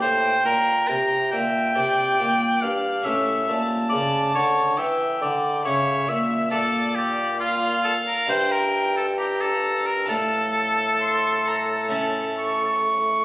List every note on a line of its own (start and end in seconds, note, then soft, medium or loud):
0.00 0.33 A2 medium
0.00 0.42 A2 soft
0.00 2.99 A#3 soft
0.00 3.00 D4 soft
0.00 3.01 G4 soft
0.00 0.44 C5 medium
0.00 1.34 G5 medium
0.45 0.85 A#2 soft
0.45 0.88 A#2 medium
0.45 0.89 A#4 medium
0.88 1.31 C3 medium
0.88 1.28 C3 soft
0.88 1.31 A#5 medium
1.31 1.72 A#2 soft
1.31 1.75 A#2 medium
1.31 1.77 E5 medium
1.31 2.63 G5 medium
1.75 2.15 C3 medium
1.75 2.18 C3 medium
1.75 3.05 D5 medium
2.19 2.64 A#2 medium
2.19 2.59 A#2 medium
2.62 3.05 G2 medium
2.62 3.02 G2 medium
2.62 3.07 F5 medium
3.02 3.48 A2 medium
3.02 3.45 A2 medium
3.02 6.46 A3 soft
3.02 6.47 C#4 soft
3.02 6.48 G4 soft
3.02 3.48 C#5 medium
3.02 3.64 E5 medium
3.49 3.91 A#2 medium
3.49 3.88 A#2 soft
3.49 4.76 A5 medium
3.90 4.34 C#3 medium
3.90 4.31 C#3 soft
3.90 4.31 D5 medium
4.35 4.77 D3 medium
4.35 4.74 D3 soft
4.35 4.79 C#5 medium
4.77 5.20 E3 medium
4.77 5.18 E3 soft
4.77 5.21 E5 medium
4.77 5.64 G5 medium
5.21 5.64 D3 medium
5.21 5.62 D3 medium
5.21 5.64 D5 medium
5.65 6.07 C#3 medium
5.65 6.05 C#3 medium
5.65 6.10 C#5 medium
5.65 6.53 E5 medium
6.08 6.51 A#2 medium
6.08 6.48 A#2 medium
6.08 6.51 E5 medium
6.50 8.11 A#2 medium
6.50 8.25 A#2 soft
6.50 8.23 D4 soft
6.50 8.24 F4 soft
6.50 6.97 A4 medium
6.50 7.40 D5 medium
6.95 7.40 G4 medium
7.40 7.83 F4 medium
7.40 8.31 F5 medium
7.85 7.94 A4 medium
8.07 8.29 A#4 medium
8.27 10.06 G2 medium
8.27 10.06 G2 soft
8.27 10.04 D4 soft
8.27 10.05 E4 soft
8.27 8.53 C5 medium
8.27 9.20 G5 medium
8.51 8.96 A#4 medium
8.97 9.07 A4 medium
9.18 9.43 G4 medium
9.18 10.08 A#5 medium
9.41 9.88 A4 medium
9.86 10.08 A#4 medium
10.06 13.25 A2 medium
10.06 13.25 A2 soft
10.06 11.87 D4 soft
10.06 11.88 F4 soft
10.06 12.80 A4 medium
10.06 10.90 A5 medium
11.01 11.49 C6 medium
11.47 11.94 A#5 medium
11.89 13.25 A3 soft
11.89 13.25 C#4 soft
11.89 13.25 E4 soft
11.89 12.38 A5 medium
12.39 13.25 C#6 medium